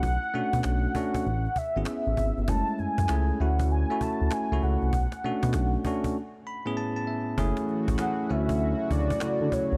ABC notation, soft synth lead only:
X:1
M:4/4
L:1/8
Q:"Swing 16ths" 1/4=98
K:F#m
V:1 name="Soft synth lead"
f4- f e3 | a g2 f g a g f- | f4- f z3 | z2 f e2 d2 c |]